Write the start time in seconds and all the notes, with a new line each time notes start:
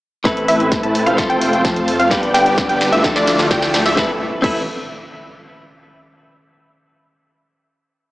0.24 A1 A2 C3 A3 C4 E4 A4 B4 E5, kick, snare, closed hi-hat, riser
0.37 closed hi-hat
0.48 A1 A3 C4 E4 B4 E5, open hi-hat
0.60 closed hi-hat
0.72 kick, snare, closed hi-hat
0.83 A2 A3 C4 E4 B4 A5, closed hi-hat
0.95 open hi-hat
1.06 F1 A3 C4 F4 C5 F5, closed hi-hat
1.17 C3 F3 C4 F4 A4 C5, kick, snare, closed hi-hat
1.30 F1 A3 C4 F4 C5 G5, closed hi-hat
1.42 open hi-hat
1.53 closed hi-hat
1.64 F2 A3 C4 F4 C5 A5, kick, snare, closed hi-hat
1.76 closed hi-hat
1.88 open hi-hat
1.99 F2 A3 C4 F4 C5 F5, closed hi-hat
2.10 G1 G2 D3 G3 B3 D4 G4 B4 D5 G5, kick, snare, closed hi-hat
2.23 closed hi-hat
2.34 G1 B3 D4 G4 D5 G5, snare, open hi-hat
2.46 closed hi-hat
2.58 kick, snare, closed hi-hat
2.69 G1 B3 D4 G4 D5 G5, closed hi-hat
2.81 snare, open hi-hat
2.92 D2 A3 E4 F4 D5 E5, closed hi-hat
3.03 D3 F3 A3 D4 A4, kick, snare, closed hi-hat
3.16 D2 A3 E4 F4 D5 F5, snare, closed hi-hat
3.27 snare, open hi-hat
3.39 snare, closed hi-hat
3.51 D2 A3 E4 F4 D5 G5, kick, snare, closed hi-hat
3.62 snare, closed hi-hat
3.74 snare, open hi-hat
3.86 D2 A3 E4 F4 D5 E5, snare, closed hi-hat
3.96 A1 C3 A3 B3 C4 E4 A4 B4 E5, kick, snare, impact
4.42 A1 A3 C4 E4 A4 B4 E5, kick, crash